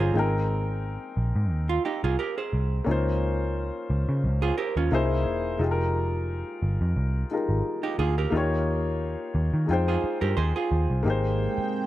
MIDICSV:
0, 0, Header, 1, 6, 480
1, 0, Start_track
1, 0, Tempo, 681818
1, 96, Time_signature, 4, 2, 24, 8
1, 8353, End_track
2, 0, Start_track
2, 0, Title_t, "Hollow-body jazz guitar"
2, 0, Program_c, 0, 26
2, 0, Note_on_c, 0, 65, 58
2, 0, Note_on_c, 0, 68, 61
2, 220, Note_off_c, 0, 68, 0
2, 222, Note_off_c, 0, 65, 0
2, 1192, Note_on_c, 0, 65, 80
2, 1293, Note_off_c, 0, 65, 0
2, 1303, Note_on_c, 0, 67, 67
2, 1307, Note_on_c, 0, 63, 62
2, 1425, Note_off_c, 0, 67, 0
2, 1427, Note_off_c, 0, 63, 0
2, 1436, Note_on_c, 0, 65, 72
2, 1438, Note_on_c, 0, 68, 70
2, 1534, Note_off_c, 0, 68, 0
2, 1536, Note_off_c, 0, 65, 0
2, 1541, Note_on_c, 0, 70, 78
2, 1547, Note_on_c, 0, 67, 65
2, 1664, Note_off_c, 0, 70, 0
2, 1667, Note_off_c, 0, 67, 0
2, 1673, Note_on_c, 0, 68, 62
2, 1675, Note_on_c, 0, 72, 59
2, 2000, Note_off_c, 0, 72, 0
2, 2002, Note_off_c, 0, 68, 0
2, 3112, Note_on_c, 0, 68, 84
2, 3115, Note_on_c, 0, 65, 67
2, 3213, Note_off_c, 0, 68, 0
2, 3214, Note_off_c, 0, 65, 0
2, 3221, Note_on_c, 0, 70, 79
2, 3226, Note_on_c, 0, 67, 60
2, 3344, Note_off_c, 0, 70, 0
2, 3347, Note_off_c, 0, 67, 0
2, 3358, Note_on_c, 0, 61, 65
2, 3360, Note_on_c, 0, 65, 64
2, 3580, Note_off_c, 0, 65, 0
2, 3582, Note_off_c, 0, 61, 0
2, 5513, Note_on_c, 0, 63, 68
2, 5515, Note_on_c, 0, 67, 68
2, 5613, Note_off_c, 0, 67, 0
2, 5614, Note_off_c, 0, 63, 0
2, 5624, Note_on_c, 0, 68, 89
2, 5628, Note_on_c, 0, 65, 65
2, 5746, Note_off_c, 0, 68, 0
2, 5748, Note_off_c, 0, 65, 0
2, 5758, Note_on_c, 0, 67, 57
2, 5759, Note_on_c, 0, 70, 67
2, 5981, Note_off_c, 0, 70, 0
2, 5982, Note_off_c, 0, 67, 0
2, 6956, Note_on_c, 0, 68, 75
2, 6961, Note_on_c, 0, 65, 66
2, 7180, Note_off_c, 0, 68, 0
2, 7183, Note_off_c, 0, 65, 0
2, 7189, Note_on_c, 0, 70, 78
2, 7193, Note_on_c, 0, 67, 66
2, 7291, Note_off_c, 0, 70, 0
2, 7293, Note_off_c, 0, 67, 0
2, 7299, Note_on_c, 0, 72, 81
2, 7303, Note_on_c, 0, 68, 68
2, 7423, Note_off_c, 0, 72, 0
2, 7425, Note_off_c, 0, 68, 0
2, 7433, Note_on_c, 0, 68, 70
2, 7439, Note_on_c, 0, 65, 61
2, 7761, Note_off_c, 0, 68, 0
2, 7764, Note_off_c, 0, 65, 0
2, 8353, End_track
3, 0, Start_track
3, 0, Title_t, "Upright piano"
3, 0, Program_c, 1, 0
3, 0, Control_c, 1, 64, 127
3, 0, Note_on_c, 1, 56, 54
3, 0, Note_on_c, 1, 61, 51
3, 0, Note_on_c, 1, 63, 56
3, 0, Note_on_c, 1, 65, 50
3, 0, Note_on_c, 1, 72, 65
3, 74, Note_off_c, 1, 56, 0
3, 84, Note_on_c, 1, 56, 66
3, 95, Note_on_c, 1, 58, 48
3, 98, Note_off_c, 1, 63, 0
3, 101, Note_off_c, 1, 61, 0
3, 103, Control_c, 1, 64, 0
3, 106, Note_off_c, 1, 65, 0
3, 108, Note_on_c, 1, 63, 56
3, 109, Note_off_c, 1, 72, 0
3, 120, Note_on_c, 1, 79, 58
3, 135, Note_on_c, 1, 70, 79
3, 143, Note_on_c, 1, 60, 60
3, 146, Note_off_c, 1, 58, 0
3, 248, Control_c, 1, 64, 127
3, 1982, Note_off_c, 1, 56, 0
3, 1994, Note_off_c, 1, 63, 0
3, 2000, Note_off_c, 1, 79, 0
3, 2002, Note_on_c, 1, 58, 70
3, 2007, Note_off_c, 1, 70, 0
3, 2011, Note_off_c, 1, 60, 0
3, 2015, Note_on_c, 1, 61, 59
3, 2024, Control_c, 1, 64, 0
3, 2025, Note_on_c, 1, 63, 55
3, 2039, Note_on_c, 1, 65, 57
3, 2051, Note_on_c, 1, 72, 73
3, 2158, Control_c, 1, 64, 127
3, 3421, Note_off_c, 1, 58, 0
3, 3427, Note_off_c, 1, 61, 0
3, 3432, Note_off_c, 1, 63, 0
3, 3439, Note_off_c, 1, 65, 0
3, 3445, Note_off_c, 1, 72, 0
3, 3458, Note_on_c, 1, 58, 69
3, 3464, Note_on_c, 1, 63, 65
3, 3465, Control_c, 1, 64, 0
3, 3471, Note_on_c, 1, 64, 69
3, 3475, Note_on_c, 1, 68, 75
3, 3482, Note_on_c, 1, 72, 86
3, 3603, Control_c, 1, 64, 127
3, 3926, Note_on_c, 1, 56, 72
3, 3927, Note_off_c, 1, 63, 0
3, 3937, Note_off_c, 1, 58, 0
3, 3937, Note_on_c, 1, 63, 61
3, 3944, Note_off_c, 1, 64, 0
3, 3944, Control_c, 1, 64, 0
3, 3945, Note_off_c, 1, 68, 0
3, 3949, Note_off_c, 1, 72, 0
3, 3950, Note_on_c, 1, 65, 64
3, 3961, Note_on_c, 1, 67, 63
3, 3974, Note_on_c, 1, 68, 65
3, 4005, Note_off_c, 1, 68, 0
3, 4021, Note_on_c, 1, 70, 81
3, 4074, Control_c, 1, 64, 127
3, 5107, Note_off_c, 1, 56, 0
3, 5113, Note_off_c, 1, 63, 0
3, 5119, Note_off_c, 1, 65, 0
3, 5125, Note_off_c, 1, 67, 0
3, 5144, Note_on_c, 1, 56, 53
3, 5149, Note_on_c, 1, 63, 49
3, 5155, Note_off_c, 1, 70, 0
3, 5155, Note_on_c, 1, 65, 51
3, 5161, Note_on_c, 1, 67, 42
3, 5166, Note_on_c, 1, 70, 54
3, 5845, Note_on_c, 1, 58, 71
3, 5846, Note_off_c, 1, 63, 0
3, 5856, Note_on_c, 1, 63, 65
3, 5857, Note_off_c, 1, 65, 0
3, 5860, Note_off_c, 1, 56, 0
3, 5864, Control_c, 1, 64, 0
3, 5868, Note_off_c, 1, 67, 0
3, 5868, Note_on_c, 1, 65, 61
3, 5871, Note_off_c, 1, 70, 0
3, 5881, Note_on_c, 1, 67, 64
3, 5893, Note_on_c, 1, 73, 75
3, 5996, Control_c, 1, 64, 127
3, 6791, Note_off_c, 1, 58, 0
3, 6797, Note_off_c, 1, 63, 0
3, 6801, Note_on_c, 1, 56, 55
3, 6803, Note_off_c, 1, 65, 0
3, 6809, Note_off_c, 1, 67, 0
3, 6814, Note_on_c, 1, 63, 54
3, 6816, Note_off_c, 1, 73, 0
3, 6826, Control_c, 1, 64, 0
3, 6826, Note_on_c, 1, 65, 57
3, 6834, Note_on_c, 1, 79, 59
3, 6849, Note_on_c, 1, 72, 65
3, 6944, Control_c, 1, 64, 127
3, 7749, Note_off_c, 1, 56, 0
3, 7756, Note_off_c, 1, 63, 0
3, 7762, Note_off_c, 1, 65, 0
3, 7763, Note_on_c, 1, 58, 71
3, 7766, Note_off_c, 1, 79, 0
3, 7773, Note_off_c, 1, 72, 0
3, 7775, Note_on_c, 1, 63, 60
3, 7785, Control_c, 1, 64, 0
3, 7787, Note_on_c, 1, 67, 56
3, 7800, Note_on_c, 1, 68, 64
3, 7813, Note_on_c, 1, 72, 79
3, 7897, Control_c, 1, 64, 127
3, 8353, Note_off_c, 1, 58, 0
3, 8353, Note_off_c, 1, 63, 0
3, 8353, Note_off_c, 1, 67, 0
3, 8353, Note_off_c, 1, 68, 0
3, 8353, Note_off_c, 1, 72, 0
3, 8353, End_track
4, 0, Start_track
4, 0, Title_t, "Analog synth pad"
4, 0, Program_c, 2, 89
4, 7778, Note_on_c, 2, 56, 74
4, 7779, Note_on_c, 2, 60, 71
4, 7781, Note_on_c, 2, 79, 84
4, 8353, Note_off_c, 2, 56, 0
4, 8353, Note_off_c, 2, 60, 0
4, 8353, Note_off_c, 2, 79, 0
4, 8353, End_track
5, 0, Start_track
5, 0, Title_t, "Picked electric bass"
5, 0, Program_c, 3, 34
5, 0, Note_on_c, 3, 31, 83
5, 76, Note_off_c, 3, 31, 0
5, 100, Note_on_c, 3, 32, 98
5, 682, Note_off_c, 3, 32, 0
5, 823, Note_on_c, 3, 34, 70
5, 925, Note_off_c, 3, 34, 0
5, 954, Note_on_c, 3, 44, 86
5, 1062, Note_off_c, 3, 44, 0
5, 1062, Note_on_c, 3, 39, 88
5, 1249, Note_off_c, 3, 39, 0
5, 1435, Note_on_c, 3, 36, 70
5, 1518, Note_off_c, 3, 36, 0
5, 1782, Note_on_c, 3, 36, 81
5, 1969, Note_off_c, 3, 36, 0
5, 2022, Note_on_c, 3, 37, 93
5, 2603, Note_off_c, 3, 37, 0
5, 2746, Note_on_c, 3, 37, 78
5, 2846, Note_off_c, 3, 37, 0
5, 2877, Note_on_c, 3, 49, 90
5, 2985, Note_on_c, 3, 37, 90
5, 2995, Note_off_c, 3, 49, 0
5, 3171, Note_off_c, 3, 37, 0
5, 3354, Note_on_c, 3, 39, 86
5, 3437, Note_off_c, 3, 39, 0
5, 3462, Note_on_c, 3, 36, 104
5, 3704, Note_off_c, 3, 36, 0
5, 3704, Note_on_c, 3, 28, 76
5, 3936, Note_off_c, 3, 28, 0
5, 3941, Note_on_c, 3, 29, 102
5, 4522, Note_off_c, 3, 29, 0
5, 4664, Note_on_c, 3, 31, 78
5, 4765, Note_off_c, 3, 31, 0
5, 4793, Note_on_c, 3, 41, 91
5, 4877, Note_off_c, 3, 41, 0
5, 4901, Note_on_c, 3, 36, 83
5, 5089, Note_off_c, 3, 36, 0
5, 5272, Note_on_c, 3, 32, 76
5, 5356, Note_off_c, 3, 32, 0
5, 5624, Note_on_c, 3, 38, 93
5, 5810, Note_off_c, 3, 38, 0
5, 5860, Note_on_c, 3, 39, 98
5, 6442, Note_off_c, 3, 39, 0
5, 6581, Note_on_c, 3, 39, 90
5, 6683, Note_off_c, 3, 39, 0
5, 6713, Note_on_c, 3, 51, 91
5, 6796, Note_off_c, 3, 51, 0
5, 6822, Note_on_c, 3, 41, 88
5, 7009, Note_off_c, 3, 41, 0
5, 7194, Note_on_c, 3, 43, 75
5, 7277, Note_off_c, 3, 43, 0
5, 7303, Note_on_c, 3, 39, 73
5, 7405, Note_off_c, 3, 39, 0
5, 7544, Note_on_c, 3, 39, 89
5, 7645, Note_off_c, 3, 39, 0
5, 7673, Note_on_c, 3, 36, 77
5, 7756, Note_off_c, 3, 36, 0
5, 7781, Note_on_c, 3, 32, 93
5, 8073, Note_off_c, 3, 32, 0
5, 8353, End_track
6, 0, Start_track
6, 0, Title_t, "Muted picked electric bass strokes"
6, 7067, Note_on_c, 9, 29, 49
6, 7137, Note_off_c, 9, 29, 0
6, 8152, Note_on_c, 9, 29, 50
6, 8222, Note_off_c, 9, 29, 0
6, 8353, End_track
0, 0, End_of_file